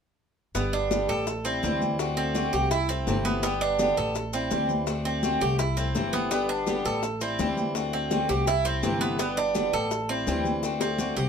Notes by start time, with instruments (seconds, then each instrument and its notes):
0.55 upright bass G1, steel-string acoustic guitar D3 G3 B3 G4, cuban tres B3, high bongo, high conga, maracas
0.73 cuban tres D4, high bongo, high conga
0.91 steel-string acoustic guitar D3 G3 B3 G4, high bongo, high conga, maracas
1.08 upright bass A1, steel-string acoustic guitar G3 B3 G4, cuban tres A4, high bongo, high conga, maracas
1.27 muted steel-string acoustic guitar stroke, high bongo, high conga, maracas
1.44 steel-string acoustic guitar G3 C4 E4, cuban tres C4, high conga, maracas
1.63 upright bass D2, steel-string acoustic guitar E3 G3 C4 E4, high bongo, low bongo, high conga, maracas
1.81 high bongo, high conga, maracas
1.99 steel-string acoustic guitar D3 A3 C4 F#4, high bongo, maracas
2.17 cuban tres C4, high bongo, high conga
2.34 steel-string acoustic guitar D3 A3 C4 F#4, high bongo, high conga, maracas
2.53 upright bass C2, steel-string acoustic guitar A3 C4 F#4, cuban tres G4, high bongo, high conga, maracas
2.71 cuban tres E4, muted steel-string acoustic guitar stroke, high bongo, high conga, maracas
2.89 steel-string acoustic guitar A3 C4 E4, cuban tres C4, high conga, maracas
3.07 upright bass G1, steel-string acoustic guitar C3 E3 A3 C4 E4, high bongo, low bongo, high conga, maracas
3.25 cuban tres B3, high bongo, high conga, maracas
3.43 steel-string acoustic guitar D3 G3 B3 G4, cuban tres B3, high bongo, high conga, maracas
3.61 cuban tres D4, high bongo, high conga
3.79 steel-string acoustic guitar D3 G3 B3 G4, high bongo, high conga, maracas
3.97 upright bass A1, steel-string acoustic guitar G3 B3 G4, cuban tres A4, high bongo, high conga, maracas
4.15 muted steel-string acoustic guitar stroke, high bongo, high conga, maracas
4.33 steel-string acoustic guitar G3 C4 E4, cuban tres C4, high conga, maracas
4.51 upright bass D2, steel-string acoustic guitar E3 G3 C4 E4, high bongo, low bongo, high conga, maracas
4.69 high bongo, high conga, maracas
4.87 steel-string acoustic guitar D3 A3 C4 F#4, high bongo, high conga, maracas
5.05 cuban tres C4, high bongo, high conga
5.23 steel-string acoustic guitar D3 A3 C4 F#4, high bongo, high conga, maracas
5.41 upright bass C2, steel-string acoustic guitar A3 C4 F#4, cuban tres G4, high bongo, high conga, maracas
5.59 cuban tres E4, muted steel-string acoustic guitar stroke, high bongo, high conga, maracas
5.77 steel-string acoustic guitar A3 C4 E4, cuban tres C4, high conga, maracas
5.95 upright bass G1, steel-string acoustic guitar C3 E3 A3 C4 E4, high bongo, low bongo, high conga, maracas
6.13 cuban tres B3, high bongo, high conga, maracas
6.31 steel-string acoustic guitar D3 G3 B3 G4, cuban tres B3, high bongo, high conga, maracas
6.49 cuban tres D4, high bongo, high conga
6.66 steel-string acoustic guitar D3 G3 B3 G4, high bongo, high conga, maracas
6.85 upright bass A1, steel-string acoustic guitar G3 B3 G4, cuban tres A4, high bongo, high conga, maracas
7.03 muted steel-string acoustic guitar stroke, high bongo, high conga, maracas
7.21 steel-string acoustic guitar G3 C4 E4, cuban tres C4, high conga, maracas
7.39 upright bass D2, steel-string acoustic guitar E3 G3 C4 E4, high bongo, low bongo, high conga, maracas
7.57 high bongo, high conga, maracas
7.75 steel-string acoustic guitar D3 A3 C4 F#4, high bongo, high conga, maracas
7.93 cuban tres C4, high bongo, high conga
8.11 steel-string acoustic guitar D3 A3 C4 F#4, high bongo, high conga, maracas
8.29 upright bass C2, steel-string acoustic guitar A3 C4 F#4, cuban tres G4, high bongo, high conga, maracas
8.47 cuban tres E4, muted steel-string acoustic guitar stroke, high bongo, high conga, maracas
8.65 steel-string acoustic guitar A3 C4 E4, cuban tres C4, high conga, maracas
8.83 upright bass G1, steel-string acoustic guitar C3 E3 A3 C4 E4, high bongo, low bongo, high conga, maracas
9.01 cuban tres B3, high bongo, high conga, maracas
9.19 steel-string acoustic guitar D3 G3 B3 G4, cuban tres B3, high bongo, high conga, maracas
9.37 cuban tres D4, high bongo, high conga
9.54 steel-string acoustic guitar D3 G3 B3 G4, high bongo, high conga, maracas
9.73 upright bass A1, steel-string acoustic guitar G3 B3 G4, cuban tres A4, high bongo, high conga, maracas
9.91 muted steel-string acoustic guitar stroke, high bongo, high conga, maracas
10.09 steel-string acoustic guitar G3 C4 E4, cuban tres C4, high conga
10.27 upright bass D2, steel-string acoustic guitar E3 G3 C4 E4, high bongo, low bongo, high conga, maracas
10.45 high bongo, high conga, maracas
10.63 steel-string acoustic guitar D3 A3 C4 F#4, high bongo, high conga, maracas
10.80 cuban tres C4, high bongo, high conga, maracas
10.98 steel-string acoustic guitar D3 A3 C4 F#4, high conga, maracas
11.17 upright bass C2, steel-string acoustic guitar A3 C4 F#4, cuban tres G4, high conga, maracas